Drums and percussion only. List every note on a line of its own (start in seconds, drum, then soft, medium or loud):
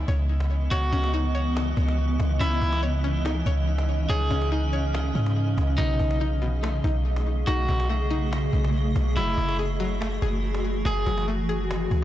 0.08 cajon bass medium
0.29 cajon slap soft
0.40 cajon slap medium
0.51 cajon slap soft
0.71 cajon bass loud
0.93 cajon bass loud
1.04 cajon slap medium
1.14 cajon slap soft
1.57 cajon slap loud
1.77 cajon bass medium
1.88 cajon slap medium
1.98 cajon slap soft
2.20 cajon bass loud
2.20 cajon slap medium
2.40 cajon bass loud
2.62 cajon bass loud
2.73 cajon slap medium
2.83 cajon slap soft
3.04 cajon slap soft
3.26 cajon slap loud
3.46 cajon bass loud
3.67 cajon slap soft
3.78 cajon slap medium
3.89 cajon slap soft
4.09 cajon bass loud
4.31 cajon bass loud
4.42 cajon slap medium
4.52 cajon slap soft
4.95 cajon slap loud
5.15 cajon bass loud
5.26 cajon slap loud
5.36 cajon slap soft
5.58 cajon bass loud
5.58 cajon slap loud
5.78 cajon bass loud
6.00 cajon bass loud
6.11 cajon slap medium
6.21 cajon slap soft
6.42 cajon slap soft
6.64 cajon slap loud
6.84 cajon bass loud
7.05 cajon slap soft
7.16 cajon slap medium
7.27 cajon slap soft
7.48 cajon bass loud
7.69 cajon bass loud
7.80 cajon slap medium
7.90 cajon slap soft
8.33 cajon slap loud
8.53 cajon bass medium
8.64 cajon slap medium
8.74 cajon slap soft
8.96 cajon bass medium
8.96 cajon slap loud
9.17 cajon bass loud
9.38 cajon bass loud
9.49 cajon slap medium
9.59 cajon slap soft
10.02 cajon slap loud
10.22 cajon bass loud
10.43 cajon slap soft
10.54 cajon slap medium
10.65 cajon slap soft
10.86 cajon bass loud
11.07 cajon bass loud
11.18 cajon slap medium
11.28 cajon slap soft
11.71 cajon slap loud
11.91 cajon bass medium